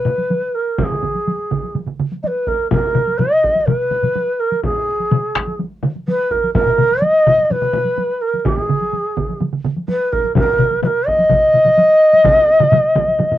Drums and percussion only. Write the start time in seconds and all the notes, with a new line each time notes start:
0.05 taiko low-mid
0.18 taiko high
0.30 taiko high
0.79 taiko, taiko mid, taiko high
0.91 taiko mid
1.03 taiko mid
1.15 taiko high
1.27 taiko high
1.51 taiko, taiko mid
1.64 taiko high
1.75 taiko mid, taiko high
1.87 taiko mid
1.99 taiko mid
2.12 taiko high
2.24 taiko high
2.47 taiko
2.71 taiko, taiko low-mid, taiko high
2.95 taiko low-mid
3.08 taiko high
3.19 taiko low-mid, taiko high
3.44 taiko
3.55 taiko high
3.67 taiko low-mid, taiko high
3.91 taiko low-mid
4.03 taiko low-mid, taiko high
4.16 taiko high
4.52 taiko high
4.63 taiko, taiko high
5.00 taiko high
5.11 taiko low-mid, taiko mid, taiko high
5.35 taiko rim, taiko, taiko high
5.47 taiko high
5.59 taiko high
5.83 taiko low-mid, taiko mid
5.95 taiko high
6.08 taiko high
6.31 taiko
6.44 taiko high
6.55 taiko, taiko low-mid, taiko high
6.67 taiko low-mid
6.79 taiko low-mid
6.91 taiko high
7.02 taiko high
7.27 taiko, taiko low-mid
7.38 taiko high
7.50 taiko low-mid, taiko high
7.62 taiko low-mid
7.74 taiko low-mid
7.86 taiko high
7.98 taiko high
8.34 taiko high
8.46 taiko, taiko mid, taiko high
8.58 taiko mid
8.69 taiko mid
8.81 taiko high
8.93 taiko high
9.17 taiko, taiko mid
9.29 taiko high
9.40 taiko mid, taiko high
9.53 taiko mid
9.64 taiko mid
9.76 taiko high
9.88 taiko high
10.13 taiko
10.24 taiko high
10.35 taiko, taiko low-mid, taiko high
10.59 taiko low-mid
10.71 taiko high
10.82 taiko low-mid, taiko high
11.08 taiko
11.18 taiko high
11.30 taiko, taiko low-mid, taiko high
11.54 taiko low-mid
11.65 taiko low-mid, taiko high
11.78 taiko high
12.13 taiko high
12.24 taiko, taiko low-mid, taiko mid, taiko high
12.60 taiko low-mid, taiko mid, taiko high
12.72 taiko low-mid, taiko mid, taiko high
12.95 taiko, taiko low-mid, taiko mid, taiko high
13.08 taiko high
13.19 taiko low-mid, taiko mid, taiko high
13.31 taiko low-mid, taiko mid